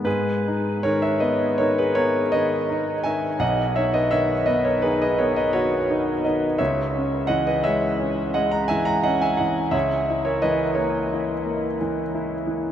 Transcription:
<<
  \new Staff \with { instrumentName = "Grand piano" } { \time 9/8 \key gis \minor \tempo 4. = 57 <gis' b'>4 <ais' cis''>16 <cis'' e''>16 <b' dis''>8 <ais' cis''>16 <gis' b'>16 <ais' cis''>8 <b' dis''>4 <e'' gis''>8 | <dis'' fis''>8 <cis'' e''>16 <b' dis''>16 <cis'' e''>8 <b' dis''>16 <ais' cis''>16 <gis' b'>16 <b' dis''>16 <ais' cis''>16 <b' dis''>16 <fis' cis''>4 <b' dis''>8 | <cis'' e''>4 <dis'' fis''>16 <b' dis''>16 <cis'' e''>4 <dis'' fis''>16 <fis'' ais''>16 <e'' gis''>16 <fis'' ais''>16 <dis'' fis''>16 <e'' gis''>16 <dis'' fis''>8 | <cis'' e''>8. <ais' cis''>16 <b' dis''>8 <ais' cis''>4. r4. | }
  \new Staff \with { instrumentName = "Grand piano" } { \time 9/8 \key gis \minor gis,8 dis'8 dis8 b8 dis'8 b8 dis8 dis'8 dis8 | b,,8 dis'8 dis8 b8 dis'8 b8 dis8 dis'8 dis8 | cis,8 cis'8 e8 gis8 cis'8 gis8 e8 cis'8 e8 | cis,8 e'8 e8 ais8 e'8 ais8 e8 e'8 e8 | }
>>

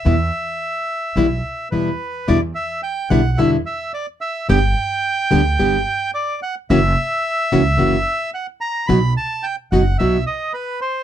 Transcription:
<<
  \new Staff \with { instrumentName = "Bandoneon" } { \time 4/4 \key e \minor \tempo 4 = 109 e''2. b'4 | d''8 e''8 g''8 fis''8 e''8 e''8 d''8 e''8 | g''2. d''8 fis''8 | e''2. fis''8 ais''8 |
b''8 a''8 g''8 fis''8 e''8 dis''8 b'8 c''8 | }
  \new Staff \with { instrumentName = "Nylon-string guitar" } { \clef bass \time 4/4 \key e \minor <b, e g b e'>8 r4. <b, e g b e'>8 r8 <b, e g b e'>8 r8 | <b, d g b e'>8 r4 <b, d g b e'>8 <b, d g b e'>8 r4. | <d g b g'>8 r4 <d g b g'>8 <d g b g'>8 r4. | <cis e ais cis' fis'>8 r4 <cis e ais cis' fis'>8 <cis e ais cis' fis'>8 r4. |
<b, fis b dis' fis'>8 r4 <b, fis b dis' fis'>8 <b, fis b dis' fis'>8 r4. | }
  \new Staff \with { instrumentName = "Upright bass" } { \clef bass \time 4/4 \key e \minor e,8 r4. b,,8 r8 e,8 r8 | e,8 r4 b,,8 r2 | g,,8 r4 d,8 g,,8 r4. | fis,,8 r4 cis,8 fis,,8 r4. |
b,,8 r4 fis,,8 b,,8 r4. | }
>>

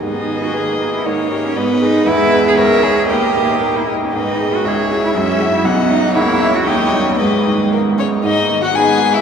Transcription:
<<
  \new Staff \with { instrumentName = "Violin" } { \time 2/4 \key gis \minor \tempo 4 = 118 dis''2 | cis''4 dis''4 | e''4 e''4 | dis''4. r8 |
dis''4 e''4 | e''4 fis''4 | e''4 dis''4 | dis''4 ais'8 cis''8 |
dis''8. fis''16 gis''8. e''16 | }
  \new Staff \with { instrumentName = "Violin" } { \time 2/4 \key gis \minor gis'2 | ais'4 b'4 | b'4 cis''4 | ais'4. r8 |
b'4 cis''4 | e''4 dis''4 | cis''4 cis''4 | b'4 ais8 cis'8 |
dis'8. fis'16 gis'8. e'16 | }
  \new Staff \with { instrumentName = "Cello" } { \time 2/4 \key gis \minor dis'8. fis'16 gis'8. e'16 | dis'8. cis'16 b8 dis'8 | e'8. gis'16 ais'8 gis'8 | g'4~ g'16 e'16 dis'16 cis'16 |
dis'8. fis'16 gis'8. e'16 | cis'8. e'16 b8 dis'8 | e'8. fis'16 g'8 g8 | gis4. r8 |
r4 b'4 | }
  \new Staff \with { instrumentName = "Grand piano" } { \time 2/4 \key gis \minor gis,8 dis8 <gis' b'>8 dis'8 | gis,8 <g' cis''>8 gis,8 <gis' b'>8 | e,8 <gis' b'>8 cis,8 <gis' cis''>8 | dis,8 ais,8 <dis' ais'>8 dis'8 |
gis,8 <dis' gis'>8 cis,8 <e' gis'>8 | fis,8 <e' fis'>8 b,,8 <dis' fis'>8 | cis,8 <cis' e'>8 dis,8 <cis' dis'>8 | gis,8 dis8 <b dis'>8 gis8 |
gis,8 dis8 <b dis'>8 gis8 | }
  \new Staff \with { instrumentName = "Viola" } { \time 2/4 \key gis \minor b4 ais4~ | ais4 gis4 | gis4 gis4 | ais4. r8 |
gis4 gis4~ | gis4 fis4 | ais4 ais4 | gis4. r8 |
dis'8. fis'16 gis'8. e'16 | }
>>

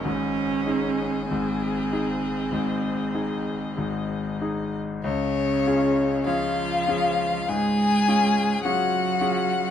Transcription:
<<
  \new Staff \with { instrumentName = "Violin" } { \time 4/4 \key des \major \tempo 4 = 49 aes'2.~ aes'8 r8 | des''4 f''4 aes''4 ges''4 | }
  \new Staff \with { instrumentName = "Violin" } { \time 4/4 \key des \major ees''4 ees''2. | des'4 f'4 aes'4 ges'4 | }
  \new Staff \with { instrumentName = "Grand piano" } { \time 4/4 \key des \major <aes,, aes,>8 <ees' aes'>8 <aes,, aes,>8 <ees' aes'>8 <aes,, aes,>8 <ees' aes'>8 <aes,, aes,>8 <ees' aes'>8 | des,8 <des' f' aes'>8 <des' f' aes'>8 <des' f' aes'>8 aes,8 <des' f' aes'>8 <des' f' aes'>8 <des' f' aes'>8 | }
  \new Staff \with { instrumentName = "Cello" } { \clef bass \time 4/4 \key des \major des'4 c'2~ c'8 r8 | des4 f4 aes4 ges4 | }
>>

